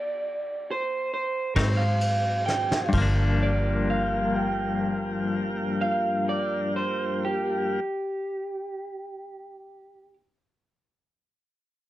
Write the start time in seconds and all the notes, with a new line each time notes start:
Already playing: D5
0.71 C5
1.14 C5
1.56 G#2 F#3 C4 D#4 G#4 C5, kick, snare, ride
1.77 F5
2.01 ride
2.46 G5, snare
2.72 snare
2.89 G2, crash
2.93 G1 F3 A#3 F4 G4, kick
2.98 A#3 D4
3.43 D5
3.90 F5
4.38 G5
5.81 F5
6.29 D5
6.76 C5
7.25 G4